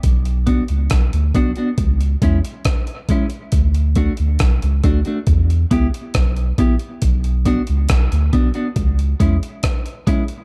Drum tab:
HH |xxxxxxxxxxxxxxxx|xxxxxxxxxxxxxxxx|xxxxxxxxxxxxxxxx|
SD |----r-------r---|----r-------r---|----r-------r---|
BD |o-o-o-o-o-o-o-o-|o-o-o-o-o-o-o-o-|o-o-o-o-o-o-o-o-|